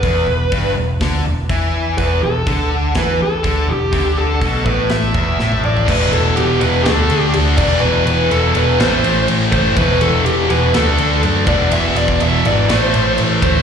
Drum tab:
CC |----------------|----------------|----------------|x-------------x-|
RD |----------------|----------------|----------------|--x-x-x-x-x-x---|
HH |o---o---o---o---|o---o---o---o---|o---o---o-------|----------------|
SD |--------o-------|--------o-------|--------o---o---|--------o-------|
T1 |----------------|----------------|-------------o--|----------------|
T2 |----------------|----------------|--------------o-|----------------|
FT |----------------|----------------|---------------o|----------------|
BD |o---o---o---o---|o---o---o---o---|o---o-o---o-----|o-------------o-|

CC |----------------|----------------|----------------|
RD |--x-x-x-x-x-x-x-|x-x-x-x-x-x-x-x-|x-x-x-x-x-x-x-x-|
HH |----------------|----------------|----------------|
SD |--------o-------|--------o-------|--------o-------|
T1 |----------------|----------------|----------------|
T2 |----------------|----------------|----------------|
FT |----------------|----------------|----------------|
BD |--------------o-|o-------------o-|---o----------o-|